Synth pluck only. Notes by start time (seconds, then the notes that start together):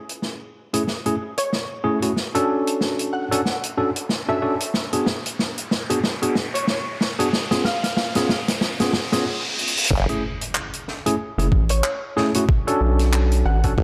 1.38 C#5
3.13 F#5
3.32 F#5
4.29 E5
6.54 C#5
7.65 F5
7.83 F5
11.70 C#5
13.46 F#5
13.64 F#5